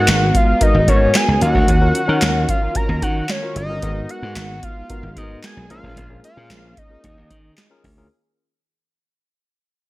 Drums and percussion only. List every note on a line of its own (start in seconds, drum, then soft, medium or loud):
0.08 snare loud
0.08 clap medium
0.08 closed hi-hat medium
0.35 kick loud
0.35 closed hi-hat medium
0.61 kick loud
0.61 closed hi-hat medium
0.88 kick loud
0.88 closed hi-hat medium
1.14 snare loud
1.14 clap medium
1.14 closed hi-hat medium
1.41 closed hi-hat medium
1.55 kick loud
1.68 kick loud
1.68 closed hi-hat medium
1.95 closed hi-hat medium
2.22 snare loud
2.22 clap medium
2.22 closed hi-hat medium
2.49 kick loud
2.49 closed hi-hat medium
2.75 kick loud
2.75 closed hi-hat medium
3.02 kick loud
3.02 closed hi-hat medium
3.29 snare loud
3.29 clap medium
3.29 closed hi-hat medium
3.56 closed hi-hat medium
3.82 kick loud
3.82 closed hi-hat loud
4.09 closed hi-hat medium
4.36 snare loud
4.36 clap loud
4.36 closed hi-hat medium
4.63 kick loud
4.63 closed hi-hat medium
4.90 kick loud
4.90 closed hi-hat medium
5.17 kick loud
5.17 closed hi-hat medium
5.43 snare loud
5.43 clap medium
5.43 closed hi-hat medium
5.70 closed hi-hat medium
5.84 kick medium
5.97 kick loud
5.97 closed hi-hat loud
6.24 closed hi-hat medium
6.51 snare loud
6.51 clap medium
6.51 closed hi-hat loud
6.77 kick loud
6.77 closed hi-hat medium
7.04 kick loud
7.04 closed hi-hat loud
7.31 kick loud
7.31 closed hi-hat medium
7.57 snare loud
7.57 clap medium
7.57 closed hi-hat medium
7.84 kick medium
7.84 open hi-hat medium